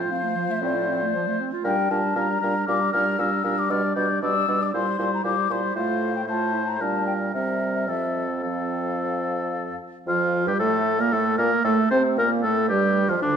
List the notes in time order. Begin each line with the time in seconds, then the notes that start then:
Already playing: F3 F4 C5
0.10 C4 F5
0.23 A3
0.35 F3
0.49 A3 E5
0.61 A2 C4 D5
0.75 F4
0.88 C4
1.02 A3
1.15 F3
1.28 A3
1.40 C4
1.52 F4
1.64 A#2 G3 D4 A#4 G5
1.90 A#2 G3 D4 A#4 A5
2.16 A#2 G3 D4 A#4 A#5
2.41 A#2 G3 D4 A#4
2.67 A#2 G3 D4 A#4 D6
2.92 A#2 G3 D4 A#4 F6
3.19 A#2 G3 D4 A#4 E6
3.44 A#2 G3 D4 A#4
3.59 D6
3.70 B2 G3 D4 D5 F6
3.96 B2 G3 D4 D5 G6
4.22 B2 G3 D4 D5 E6
4.48 B2 G3 D4 D5
4.63 D6
4.74 A#2 G3 E4 C5 C6
4.98 A#2 G3 E4 C5
5.14 A#5
5.24 A#2 G3 E4 C5 D6
5.49 A#2 G3 E4 C5 C6
5.76 A2 A3 F4 C5 F5
6.16 G5
6.27 A3 F4 C5 A5
6.53 E4
6.68 A#5
6.80 A#2 G3 D4 A#4 A5
7.07 G5
7.34 C3 G3 C4 A#4 E5
7.75 E5
7.87 F2 F3 C4 A4 E5
8.43 F3 C4 A4 F5
10.06 F2 F3 F4
10.46 G2 G3 G4
10.59 A2 A3 A4
10.99 A#2 A#3 A#4
11.12 A2 A3 A4
11.38 A#2 A#3 A#4
11.64 A2 A3 A4
11.91 C3 C4 C5
12.17 A#2 A#3 A#4
12.43 A2 A3 A4
12.69 G2 G3 G4
13.08 F2 F3 F4
13.22 D2 D3 D4